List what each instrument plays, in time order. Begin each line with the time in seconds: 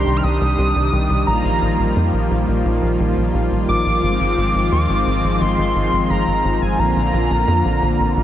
Already playing: analog synth pad C3 D#3 G3 D4 G4, analog synth lead C6
0.06 analog synth bass C2
0.17 analog synth lead F6
0.23 analog synth bass C2, analog synth lead D#6
0.41 analog synth bass C2
0.58 analog synth bass C2
0.75 analog synth bass C2
0.93 analog synth bass C2
1.10 analog synth bass C2
1.27 analog synth bass A#1, analog synth pad F3 A#3 F4, analog synth lead A#5
1.45 analog synth bass A#1
1.62 analog synth bass A#1
1.79 analog synth bass A#1
1.96 analog synth bass F2
2.13 analog synth bass A#1
2.31 analog synth bass A#1
2.48 analog synth bass A#1
2.65 analog synth bass A#1
2.82 analog synth bass A#1
3.00 analog synth bass A#1
3.17 analog synth bass A#1
3.34 analog synth bass A#1
3.51 analog synth bass A#1
3.69 analog synth bass A#1, analog synth lead D6
3.86 analog synth bass A#1
4.03 analog synth bass G#1, analog synth pad D#3 F3 G#3 C4
4.20 analog synth bass G#1
4.37 analog synth bass G#1
4.55 analog synth bass G#1
4.72 analog synth bass D#2, analog synth lead D6
4.89 analog synth bass G#1
5.06 analog synth bass G#1
5.24 analog synth bass G#1
5.41 analog synth bass G#1, analog synth lead C6
5.58 analog synth bass G#1
5.75 analog synth bass G#1
5.93 analog synth bass G#1
6.10 analog synth bass G#1, analog synth lead A#5
6.27 analog synth bass G#1
6.45 analog synth bass G#1
6.62 analog synth bass G#1, analog synth lead G#5
6.79 analog synth bass A#1, analog synth pad D3 A#3 F4, analog synth lead A#5
6.96 analog synth bass A#1
7.13 analog synth bass A#1
7.31 analog synth bass A#1
7.48 analog synth bass F2
7.65 analog synth bass A#1
7.82 analog synth bass A#1
8.00 analog synth bass A#1
8.17 analog synth bass A#1